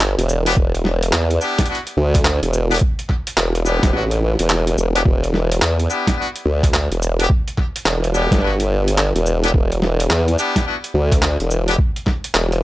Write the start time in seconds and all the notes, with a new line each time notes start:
Already playing: G1
0.01 clap
0.18 E1, closed hi-hat
0.29 shaker
0.46 B3 D4 E4 G4, closed hi-hat
0.48 closed hi-hat
0.52 closed hi-hat
0.54 closed hi-hat
0.55 E1, kick, closed hi-hat
0.75 closed hi-hat
0.85 snare
1.03 closed hi-hat
1.13 E2, clap
1.31 closed hi-hat
1.41 B3 D4 E4 G4, shaker
1.58 kick, snare, closed hi-hat
1.66 B3 D4 E4 F#4, closed hi-hat
1.75 closed hi-hat
1.87 closed hi-hat
1.97 D2
2.15 kick, clap, closed hi-hat
2.25 clap
2.43 E1, closed hi-hat
2.53 shaker
2.71 B3 D4 E4 G4, closed hi-hat
2.73 closed hi-hat
2.76 closed hi-hat
2.78 closed hi-hat
2.79 kick, closed hi-hat
2.99 closed hi-hat
3.09 kick, clap
3.27 closed hi-hat
3.37 E1, clap
3.55 closed hi-hat
3.65 B3 D4 E4 G4, shaker
3.83 E1, kick, snare, closed hi-hat
3.93 A1 B3 D4 E4 F#4
4.11 closed hi-hat
4.39 E1, closed hi-hat
4.50 clap
4.67 closed hi-hat
4.77 E1, shaker
4.95 B3 D4 E4 G4, closed hi-hat
5.05 E1, kick
5.24 closed hi-hat
5.34 snare
5.52 closed hi-hat
5.62 E2, clap
5.79 closed hi-hat
5.90 B3 D4 E4 G4, shaker
6.07 kick, snare, closed hi-hat
6.18 B3 D4 E4 F#4
6.36 closed hi-hat
6.46 D2
6.63 kick, clap, closed hi-hat
6.74 clap
6.91 E1, closed hi-hat
7.02 shaker
7.19 B3 D4 E4 G4, closed hi-hat
7.30 kick
7.48 closed hi-hat
7.58 kick, clap
7.76 closed hi-hat
7.85 E1, clap
8.04 closed hi-hat
8.14 B3 D4 E4 G4, shaker
8.31 G1, kick, snare, closed hi-hat
8.39 B3 D4 E4 F#4, snare
8.60 closed hi-hat
8.88 closed hi-hat
8.98 clap
9.15 E1, closed hi-hat
9.26 shaker
9.44 B3 D4 E4 G4, closed hi-hat
9.54 E1, kick
9.72 closed hi-hat
9.82 snare
10.00 closed hi-hat
10.10 E2, clap
10.28 closed hi-hat
10.38 B3 D4 E4 G4, shaker
10.56 kick, snare, closed hi-hat
10.66 B3 D4 E4 F#4
10.84 closed hi-hat
10.94 D2
11.12 kick, clap, closed hi-hat
11.22 clap
11.40 E1, closed hi-hat
11.51 shaker
11.68 B3 D4 E4 G4, closed hi-hat
11.79 kick
11.96 closed hi-hat
12.07 kick, clap, snare
12.24 closed hi-hat
12.35 E1, clap
12.52 closed hi-hat